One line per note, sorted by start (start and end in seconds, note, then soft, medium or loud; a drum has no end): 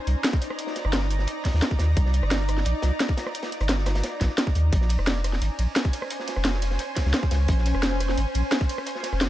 0.00 4.69 D#4 medium
0.00 4.69 D5 medium
0.00 4.69 A#5 medium
0.07 0.15 C2 medium
0.07 closed hi-hat medium
0.07 shaker medium
0.24 snare loud
0.24 closed hi-hat medium
0.33 kick loud
0.33 closed hi-hat soft
0.42 closed hi-hat medium
0.42 open hi-hat medium
0.42 shaker medium
0.50 cross-stick soft
0.59 closed hi-hat medium
0.67 snare medium
0.76 snare medium
0.76 closed hi-hat medium
0.76 shaker medium
0.85 1.27 G1 loud
0.85 cross-stick soft
0.93 snare loud
0.93 closed hi-hat medium
1.02 snare medium
1.10 closed hi-hat medium
1.10 open hi-hat medium
1.10 shaker medium
1.19 snare medium
1.19 shaker soft
1.27 closed hi-hat loud
1.27 closed hi-hat medium
1.45 kick medium
1.45 snare soft
1.45 closed hi-hat medium
1.45 open hi-hat medium
1.45 shaker medium
1.54 1.62 D#2 loud
1.54 snare soft
1.62 snare loud
1.62 closed hi-hat medium
1.71 kick loud
1.79 1.95 D#2 medium
1.79 snare loud
1.79 closed hi-hat medium
1.79 open hi-hat medium
1.79 shaker medium
1.96 2.22 C2 loud
1.96 kick loud
1.96 closed hi-hat medium
1.96 closed hi-hat loud
2.06 snare soft
2.13 closed hi-hat medium
2.13 shaker medium
2.23 2.64 G1 loud
2.23 cross-stick soft
2.31 snare loud
2.31 closed hi-hat loud
2.31 closed hi-hat medium
2.39 snare soft
2.48 cross-stick soft
2.48 closed hi-hat medium
2.48 open hi-hat medium
2.48 shaker medium
2.58 snare soft
2.58 shaker soft
2.65 2.74 A#1 medium
2.65 closed hi-hat medium
2.65 closed hi-hat loud
2.82 2.91 C2 medium
2.82 snare loud
2.82 closed hi-hat medium
2.82 shaker medium
3.00 snare loud
3.00 closed hi-hat medium
3.00 closed hi-hat loud
3.08 kick loud
3.08 closed hi-hat soft
3.17 snare loud
3.17 closed hi-hat medium
3.17 open hi-hat medium
3.17 shaker medium
3.26 cross-stick soft
3.26 snare soft
3.35 closed hi-hat medium
3.35 closed hi-hat loud
3.43 snare loud
3.43 closed hi-hat medium
3.51 snare soft
3.51 closed hi-hat medium
3.51 shaker medium
3.61 4.02 G1 loud
3.61 cross-stick soft
3.61 closed hi-hat medium
3.69 snare loud
3.69 closed hi-hat medium
3.78 snare medium
3.86 cross-stick soft
3.86 snare loud
3.86 closed hi-hat medium
3.86 open hi-hat medium
3.86 shaker medium
3.95 snare loud
3.95 closed hi-hat medium
3.95 shaker soft
4.03 snare loud
4.03 closed hi-hat loud
4.03 closed hi-hat medium
4.21 4.29 A#1 medium
4.21 kick medium
4.21 snare loud
4.21 snare soft
4.21 closed hi-hat medium
4.21 shaker medium
4.30 snare soft
4.30 shaker soft
4.38 snare loud
4.38 closed hi-hat medium
4.38 closed hi-hat loud
4.47 kick loud
4.47 snare soft
4.55 4.71 D#2 medium
4.55 closed hi-hat medium
4.55 open hi-hat medium
4.55 shaker medium
4.73 4.97 A#1 loud
4.73 9.29 C#4 medium
4.73 9.29 C5 medium
4.73 9.29 G#5 medium
4.73 kick loud
4.73 closed hi-hat medium
4.81 snare soft
4.89 closed hi-hat medium
4.89 ride bell medium
4.89 shaker medium
4.99 5.40 F1 loud
4.99 cross-stick soft
5.07 snare loud
5.07 closed hi-hat loud
5.07 closed hi-hat medium
5.16 snare soft
5.24 cross-stick soft
5.24 closed hi-hat medium
5.24 open hi-hat medium
5.24 ride bell medium
5.24 shaker medium
5.33 snare soft
5.33 shaker soft
5.42 5.50 G#1 medium
5.42 closed hi-hat medium
5.42 closed hi-hat loud
5.59 5.67 A#1 medium
5.59 closed hi-hat medium
5.59 ride bell medium
5.59 shaker medium
5.76 snare loud
5.76 closed hi-hat loud
5.76 closed hi-hat medium
5.85 kick loud
5.85 closed hi-hat soft
5.93 closed hi-hat medium
5.93 open hi-hat medium
5.93 ride bell medium
5.93 shaker medium
6.02 cross-stick medium
6.10 closed hi-hat medium
6.10 closed hi-hat loud
6.20 snare medium
6.28 snare medium
6.28 closed hi-hat medium
6.28 ride bell medium
6.28 shaker medium
6.36 6.78 F1 loud
6.36 cross-stick soft
6.45 snare loud
6.45 closed hi-hat loud
6.45 closed hi-hat medium
6.54 snare medium
6.62 closed hi-hat medium
6.62 open hi-hat medium
6.62 ride bell medium
6.62 shaker medium
6.71 snare medium
6.71 shaker soft
6.79 closed hi-hat medium
6.96 kick medium
6.96 snare soft
6.96 closed hi-hat medium
6.96 open hi-hat medium
6.96 ride bell medium
6.96 shaker medium
7.06 7.13 C#2 loud
7.06 snare soft
7.14 snare loud
7.14 closed hi-hat loud
7.14 closed hi-hat medium
7.23 kick loud
7.31 7.47 C#2 medium
7.31 snare loud
7.31 closed hi-hat medium
7.31 open hi-hat medium
7.31 ride bell medium
7.31 shaker medium
7.48 7.73 A#1 loud
7.48 kick loud
7.48 closed hi-hat medium
7.48 closed hi-hat loud
7.58 snare soft
7.66 closed hi-hat medium
7.66 ride bell medium
7.66 shaker medium
7.75 8.16 F1 loud
7.75 cross-stick soft
7.82 snare loud
7.82 closed hi-hat medium
7.92 snare soft
8.00 cross-stick soft
8.00 closed hi-hat medium
8.00 open hi-hat medium
8.00 ride bell medium
8.00 shaker medium
8.09 snare soft
8.09 shaker soft
8.18 8.26 G#1 medium
8.18 closed hi-hat medium
8.34 8.43 A#1 medium
8.34 closed hi-hat medium
8.34 ride bell medium
8.34 shaker medium
8.51 snare loud
8.51 closed hi-hat medium
8.61 kick loud
8.61 closed hi-hat soft
8.69 closed hi-hat medium
8.69 open hi-hat medium
8.69 ride bell medium
8.69 shaker medium
8.78 cross-stick medium
8.86 closed hi-hat medium
8.95 snare medium
9.03 snare medium
9.03 closed hi-hat medium
9.03 ride bell medium
9.03 shaker medium
9.13 9.29 F1 loud
9.13 cross-stick soft
9.21 snare loud
9.21 closed hi-hat medium